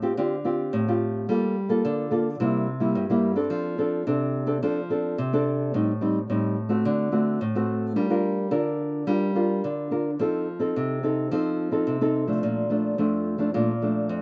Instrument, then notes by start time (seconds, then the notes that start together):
nylon-string guitar
Already playing: A2
0.02 C4 F4 G4
0.17 D3 C4 F4 G4
0.45 C4 F4 G4
0.73 A2
0.88 C4 F4 G4
1.29 G3 A#3 F4 A4
1.69 A#3 F4 A4
1.85 D3
2.11 A#3 F4 A4
2.40 C3 G3 A#3 E4
2.80 G3 A#3 E4
2.95 G2
3.10 G3 A#3 E4
3.35 C4 D4 A4
3.50 F3
3.78 C4 D4 A4
4.07 C3 C4 D4 A4
4.46 C4 D4 A4
4.63 F3 C4 D4 A4
4.90 C4 D4 A4
5.18 C3
5.33 C4 D4 A4
5.74 A2 G3 C4 D#4
6.01 G3 C4 D#4
6.30 A2 G3 C4 D#4
6.69 A3 C4 F#4
6.85 D3
7.12 A3 C4 F#4
7.41 A2
7.55 A3 C4 F#4
7.96 G3 D4 F4 A#4
8.10 D4 F4 A#4
8.51 D3 D4 F4 A#4
9.07 G3 D4 F4 A#4
9.35 D4 F4 A#4
9.64 D3
9.91 D4 F4 A#4
10.19 F3 C4 D#4 A4
10.59 C4 D#4 A4
10.76 C3
11.03 C4 D#4 A4
11.31 F3 C4 D#4 A4
11.71 C4 D#4 A4
11.87 C3
12.01 C4 D#4 A4
12.27 F3 A3 D4
12.43 A#2
12.70 F3 A3 D4
12.98 F2 F3 A3 D4
13.38 F3 A3 D4
13.54 A#2 F3 A3 D4
13.82 F3 A3 D4
14.09 F2